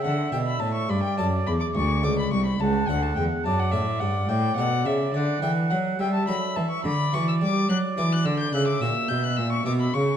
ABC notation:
X:1
M:12/8
L:1/16
Q:3/8=71
K:D
V:1 name="Violin"
f2 g b a c' b g a2 b d' c'2 d' b c' b a2 f a g2 | a f e2 f2 g2 f2 e2 d2 g2 f2 g a b2 a c' | [K:Bm] b2 c' e' d'2 f'2 d' f' e' g' f' d' e'2 g' f' e' c' d' b c'2 |]
V:2 name="Oboe"
e6 d8- d2 z2 f6 | d6 d6 f6 e6 | [K:Bm] d6 d6 e8- e2 z2 |]
V:3 name="Harpsichord"
z2 [DA]6 [DA]4 z2 [DA]6 [DA]4 | z2 [DA]6 [DA]4 z2 [DA]6 [DA]4 | [K:Bm] z2 [FB]6 [FB]4 z2 [F^A]6 [FA]4 |]
V:4 name="Harpsichord" clef=bass
D,2 B,,2 A,,2 G,,2 F,,2 E,,2 D,,2 C,,2 =C,,2 ^C,,2 D,,2 E,,2 | F,,2 A,,2 G,,2 A,,2 B,,2 C,2 D,2 E,2 F,2 G,2 F,2 E,2 | [K:Bm] D,2 E,2 G,2 F,2 E,2 D,2 C,2 ^A,,2 B,,2 A,,2 B,,2 C,2 |]
V:5 name="Cello" clef=bass
D,2 B,,2 A,,2 G,,2 F,,2 E,,2 D,,2 C,,2 =C,,2 ^C,,2 D,,2 E,,2 | F,,2 A,,2 G,,2 A,,2 B,,2 C,2 D,2 E,2 F,2 G,2 F,2 E,2 | [K:Bm] D,2 E,2 G,2 F,2 E,2 D,2 C,2 ^A,,2 B,,2 A,,2 B,,2 C,2 |]